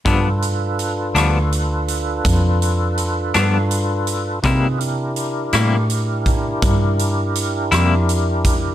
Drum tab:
HH |xxxxxxxxxxxx|xxxxxxxxxxxx|
SD |---r-----r--|---r-----r--|
BD |o-----o-----|o----oo----o|